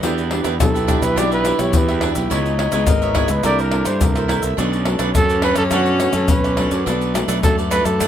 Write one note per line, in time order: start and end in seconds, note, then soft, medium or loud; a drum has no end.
0.03 0.40 E2 loud
0.03 0.57 E3 soft
0.03 0.20 B3 medium
0.03 0.20 D4 soft
0.03 0.29 D4 medium
0.03 2.34 E4 loud
0.03 0.30 G4 medium
0.03 0.21 G4 medium
0.03 0.30 B4 medium
0.03 0.31 E5 medium
0.03 pandeiro medium
0.03 shaker medium
0.03 surdo medium
0.18 pandeiro soft
0.18 shaker soft
0.30 0.49 B3 medium
0.30 0.43 D4 medium
0.30 0.49 D4 medium
0.30 0.43 G4 soft
0.30 0.49 G4 medium
0.30 0.44 B4 medium
0.30 0.44 E5 medium
0.30 pandeiro medium
0.30 tamborim medium
0.44 0.58 E2 medium
0.44 0.54 D4 medium
0.44 0.54 G4 medium
0.44 0.55 B4 medium
0.44 0.55 E5 medium
0.44 pandeiro medium
0.44 tamborim medium
0.44 shaker medium
0.60 0.97 B1 medium
0.60 1.14 B2 medium
0.60 0.77 B3 medium
0.60 0.77 D4 medium
0.60 0.78 G4 medium
0.60 1.04 A4 medium
0.60 pandeiro loud
0.60 tamborim medium
0.60 shaker medium
0.60 surdo loud
0.74 0.87 G4 soft
0.74 0.87 B4 medium
0.74 0.87 E5 medium
0.74 pandeiro soft
0.74 shaker soft
0.87 1.13 B3 medium
0.87 1.01 D4 medium
0.87 1.13 D4 medium
0.87 1.02 G4 medium
0.87 1.13 G4 medium
0.87 1.01 B4 medium
0.87 1.00 E5 loud
0.87 pandeiro medium
0.87 tamborim medium
0.87 shaker medium
0.87 surdo medium
1.01 1.51 B1 medium
1.01 1.15 G4 soft
1.01 1.20 B4 loud
1.01 1.16 B4 soft
1.01 1.15 E5 soft
1.01 pandeiro medium
1.01 tamborim medium
1.01 shaker medium
1.16 1.72 E3 medium
1.16 1.42 B3 medium
1.16 1.43 D4 medium
1.16 1.42 D4 medium
1.16 1.44 G4 medium
1.16 1.42 G4 medium
1.16 1.45 B4 medium
1.16 1.32 D5 loud
1.16 1.45 E5 medium
1.16 pandeiro medium
1.16 tamborim medium
1.16 shaker medium
1.16 surdo medium
1.32 1.62 B4 medium
1.32 pandeiro soft
1.32 shaker soft
1.44 1.54 B3 medium
1.44 1.87 D4 medium
1.44 1.55 D4 medium
1.44 1.87 G4 medium
1.44 1.55 G4 medium
1.44 1.87 B4 medium
1.44 1.87 E5 medium
1.44 pandeiro medium
1.44 tamborim medium
1.44 shaker medium
1.59 1.72 B1 medium
1.59 1.98 B3 medium
1.59 1.98 D4 medium
1.59 1.98 G4 medium
1.59 1.78 C#5 medium
1.59 pandeiro medium
1.59 tamborim medium
1.59 shaker medium
1.73 2.11 E2 loud
1.73 2.29 B2 medium
1.73 2.18 B4 medium
1.73 pandeiro medium
1.73 shaker medium
1.73 surdo loud
1.89 2.01 G4 soft
1.89 2.02 B4 soft
1.89 2.02 E5 medium
1.89 pandeiro soft
1.89 tamborim medium
1.89 shaker soft
2.01 2.20 B3 medium
2.01 2.15 D4 medium
2.01 2.20 D4 medium
2.01 2.15 G4 medium
2.01 2.20 G4 medium
2.01 2.15 B4 medium
2.01 2.14 E5 medium
2.01 pandeiro medium
2.01 tamborim medium
2.15 2.29 B1 medium
2.15 2.30 G4 soft
2.15 2.29 B4 soft
2.15 2.29 E5 medium
2.15 pandeiro medium
2.15 shaker medium
2.30 2.68 C#2 loud
2.30 2.86 C#3 medium
2.30 2.58 B3 medium
2.30 3.47 D#4 loud
2.30 2.57 E4 medium
2.30 2.59 E4 soft
2.30 2.59 G#4 medium
2.30 2.57 B4 medium
2.30 2.58 C#5 medium
2.30 2.58 E5 medium
2.30 pandeiro medium
2.30 shaker medium
2.30 surdo medium
2.46 pandeiro soft
2.46 shaker soft
2.58 2.71 E4 medium
2.58 2.71 B4 medium
2.58 2.71 C#5 medium
2.58 2.71 E5 medium
2.58 pandeiro medium
2.58 tamborim medium
2.72 2.85 C#2 medium
2.72 3.11 B3 medium
2.72 2.82 E4 medium
2.72 3.12 G#4 medium
2.72 2.82 B4 medium
2.72 2.82 C#5 medium
2.72 2.82 E5 medium
2.72 pandeiro medium
2.72 tamborim medium
2.72 shaker medium
2.87 3.25 G#1 medium
2.87 3.42 G#2 medium
2.87 3.31 A#4 medium
2.87 pandeiro medium
2.87 tamborim medium
2.87 shaker medium
2.87 surdo loud
3.02 3.13 B4 soft
3.02 3.14 C#5 medium
3.02 3.14 E5 medium
3.02 pandeiro soft
3.02 shaker soft
3.14 3.40 B3 medium
3.14 3.28 E4 medium
3.14 3.40 E4 medium
3.14 3.40 G#4 medium
3.14 3.29 B4 medium
3.14 3.29 C#5 medium
3.14 3.28 E5 medium
3.14 pandeiro medium
3.14 tamborim medium
3.14 surdo medium
3.28 3.42 C#2 medium
3.28 3.44 B4 medium
3.28 3.44 B4 soft
3.28 3.43 C#5 soft
3.28 3.43 E5 medium
3.28 pandeiro medium
3.28 tamborim medium
3.28 shaker medium
3.43 3.81 C2 medium
3.43 3.99 C3 medium
3.43 3.69 A#3 medium
3.43 4.32 D4 medium
3.43 3.71 E4 medium
3.43 3.69 E4 medium
3.43 3.69 A4 medium
3.43 3.72 A#4 medium
3.43 3.72 C5 medium
3.43 3.62 D5 loud
3.43 3.72 E5 medium
3.43 pandeiro medium
3.43 tamborim medium
3.43 shaker medium
3.43 surdo medium
3.59 3.88 A#4 medium
3.59 pandeiro soft
3.59 shaker soft
3.71 4.11 A#3 medium
3.71 4.15 E4 soft
3.71 4.12 E4 medium
3.71 4.12 A4 medium
3.71 4.15 A#4 medium
3.71 4.15 C5 soft
3.71 4.14 E5 medium
3.71 pandeiro medium
3.71 tamborim medium
3.85 3.99 G2 medium
3.85 4.01 C5 medium
3.85 pandeiro medium
3.85 tamborim medium
3.85 shaker medium
4.01 4.38 C2 loud
4.01 4.55 G2 medium
4.01 4.42 A#4 medium
4.01 pandeiro medium
4.01 shaker medium
4.01 surdo loud
4.16 4.54 A#3 medium
4.16 4.54 E4 medium
4.16 4.55 A4 medium
4.16 4.27 A#4 soft
4.16 4.28 C5 medium
4.16 4.29 E5 soft
4.16 pandeiro soft
4.16 tamborim medium
4.16 shaker soft
4.28 4.42 E4 medium
4.28 4.42 A#4 medium
4.28 4.42 C5 medium
4.28 4.41 E5 medium
4.28 pandeiro medium
4.28 tamborim medium
4.42 4.56 C2 medium
4.42 4.57 A#4 soft
4.42 4.57 C5 medium
4.42 4.56 E5 medium
4.42 pandeiro medium
4.42 shaker medium
4.57 4.95 B1 loud
4.57 5.12 B2 medium
4.57 4.75 F#3 medium
4.57 4.75 A3 medium
4.57 6.86 C#4 loud
4.57 4.84 D4 medium
4.57 4.75 D4 medium
4.57 4.84 A4 medium
4.57 4.85 B4 medium
4.57 4.85 D5 medium
4.57 pandeiro medium
4.57 shaker medium
4.57 surdo medium
4.73 pandeiro soft
4.73 shaker soft
4.85 5.04 F#3 medium
4.85 5.04 A3 medium
4.85 4.98 D4 soft
4.85 5.04 D4 medium
4.85 4.98 A4 medium
4.85 4.99 B4 medium
4.85 4.99 D5 medium
4.85 pandeiro medium
4.85 tamborim loud
4.99 5.12 B1 medium
4.99 5.09 D4 medium
4.99 5.09 A4 medium
4.99 5.10 B4 medium
4.99 5.10 D5 medium
4.99 pandeiro medium
4.99 tamborim medium
4.99 shaker medium
5.15 5.69 F#2 medium
5.15 5.52 F#2 medium
5.15 5.52 F#3 medium
5.15 5.52 A3 medium
5.15 5.42 A4 loud
5.15 pandeiro medium
5.15 tamborim medium
5.15 shaker medium
5.15 surdo loud
5.29 5.42 A4 soft
5.29 5.42 B4 soft
5.29 5.43 D5 medium
5.29 pandeiro soft
5.29 shaker soft
5.42 5.56 D4 medium
5.42 5.57 A4 medium
5.42 5.55 B4 medium
5.42 5.57 B4 loud
5.42 5.55 D5 medium
5.42 pandeiro medium
5.42 tamborim medium
5.56 6.06 F#2 medium
5.56 5.71 A4 soft
5.56 5.64 A4 medium
5.56 5.70 B4 soft
5.56 5.70 D5 soft
5.56 pandeiro medium
5.56 tamborim medium
5.56 shaker medium
5.71 6.26 B2 medium
5.71 5.89 F#3 medium
5.71 5.89 A3 medium
5.71 6.00 D4 medium
5.71 5.90 D4 medium
5.71 5.99 F#4 loud
5.71 5.98 A4 medium
5.71 5.99 B4 medium
5.71 6.00 D5 medium
5.71 pandeiro medium
5.71 tamborim medium
5.71 shaker medium
5.71 surdo medium
5.86 pandeiro soft
5.86 shaker soft
6.00 6.10 F#3 medium
6.00 6.11 A3 medium
6.00 6.11 D4 medium
6.00 6.16 F#4 medium
6.00 6.42 A4 medium
6.00 6.42 B4 medium
6.00 pandeiro medium
6.00 tamborim medium
6.00 shaker medium
6.13 6.27 F#2 medium
6.13 6.53 F#3 medium
6.13 6.54 A3 medium
6.13 6.32 A4 medium
6.13 pandeiro medium
6.13 tamborim medium
6.13 shaker medium
6.28 6.66 B1 loud
6.28 6.84 F#2 medium
6.28 6.73 B4 medium
6.28 pandeiro medium
6.28 shaker medium
6.28 surdo loud
6.44 6.56 A4 soft
6.44 6.56 B4 soft
6.44 6.57 D5 medium
6.44 pandeiro soft
6.44 tamborim medium
6.44 shaker soft
6.57 6.82 F#3 medium
6.57 6.82 A3 medium
6.57 6.71 D4 medium
6.57 6.82 D4 medium
6.57 6.71 A4 medium
6.57 6.71 B4 medium
6.57 6.70 D5 medium
6.57 pandeiro medium
6.57 tamborim medium
6.71 6.84 F#2 medium
6.71 6.85 A4 soft
6.71 6.85 B4 medium
6.71 6.85 D5 medium
6.71 pandeiro medium
6.71 shaker medium
6.85 7.23 B1 loud
6.85 7.41 B2 medium
6.85 7.03 F#3 soft
6.85 7.04 A3 medium
6.85 7.16 B3 medium
6.85 7.13 D4 medium
6.85 7.04 D4 medium
6.85 7.13 A4 medium
6.85 7.14 B4 medium
6.85 7.14 D5 medium
6.85 pandeiro medium
6.85 shaker medium
6.85 surdo medium
7.01 pandeiro soft
7.01 shaker soft
7.14 7.39 F#3 medium
7.14 8.08 A3 medium
7.14 7.39 A3 medium
7.14 7.27 D4 medium
7.14 7.39 D4 medium
7.14 7.27 A4 medium
7.14 7.27 B4 medium
7.14 7.27 D5 medium
7.14 pandeiro medium
7.14 tamborim medium
7.14 shaker medium
7.28 7.41 B1 medium
7.28 7.37 D4 medium
7.28 7.38 A4 medium
7.28 7.38 B4 medium
7.28 7.38 D5 medium
7.28 pandeiro medium
7.28 tamborim medium
7.28 shaker medium
7.43 7.80 F#2 medium
7.43 7.98 F#2 medium
7.43 7.60 F#3 medium
7.43 7.61 A3 medium
7.43 7.61 D4 medium
7.43 7.57 A4 medium
7.43 pandeiro medium
7.43 tamborim medium
7.43 shaker medium
7.43 surdo loud
7.58 7.70 A4 soft
7.58 7.71 B4 medium
7.58 7.71 D5 medium
7.58 pandeiro soft
7.58 shaker soft
7.70 7.95 F#3 medium
7.70 7.96 A3 medium
7.70 7.84 D4 medium
7.70 7.96 D4 medium
7.70 7.85 A4 medium
7.70 7.87 B4 loud
7.70 7.85 B4 medium
7.70 7.84 D5 medium
7.70 pandeiro medium
7.70 tamborim medium
7.70 shaker medium
7.85 8.08 F#2 medium
7.85 8.08 A4 loud
7.85 8.00 A4 soft
7.85 7.99 B4 soft
7.85 7.99 D5 soft
7.85 pandeiro medium
7.85 tamborim medium
7.85 shaker medium
8.00 8.08 B2 medium
8.00 8.08 F#3 medium
8.00 8.08 A3 medium
8.00 8.08 D4 medium
8.00 8.08 A4 medium
8.00 8.08 B4 medium
8.00 8.08 D5 medium
8.00 pandeiro medium
8.00 tamborim medium
8.00 shaker medium
8.00 surdo medium